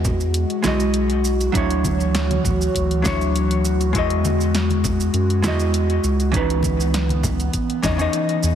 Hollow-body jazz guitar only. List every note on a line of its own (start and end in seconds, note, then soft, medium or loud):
0.00 0.60 G#3 medium
0.00 0.61 E4 medium
0.00 0.62 F#4 medium
0.00 0.63 D#5 loud
0.62 1.50 G#3 medium
0.62 1.51 E4 medium
0.62 1.52 F#4 medium
0.68 1.53 D#5 medium
1.52 3.00 F#3 medium
1.52 3.01 D4 medium
1.52 3.02 E4 medium
1.57 3.02 C#5 medium
3.02 3.90 F#3 medium
3.02 3.91 D4 medium
3.02 3.92 E4 medium
3.07 3.92 C#5 medium
3.93 5.40 G#3 medium
3.93 5.41 E4 medium
3.93 5.42 F#4 medium
3.98 5.43 D#5 loud
5.42 6.30 G#3 medium
5.42 6.31 E4 medium
5.42 6.32 F#4 medium
5.48 6.33 D#5 medium
6.32 7.80 E3 medium
6.32 7.80 C#4 medium
6.32 7.81 D#4 medium
6.36 7.82 B4 medium
7.82 7.95 E3 medium
7.82 7.96 C#4 medium
7.82 7.96 D#4 medium
7.82 7.97 D#5 loud
7.97 8.55 E3 medium
7.97 8.55 C#4 medium
7.97 8.55 D#4 medium
8.01 8.55 D#5 loud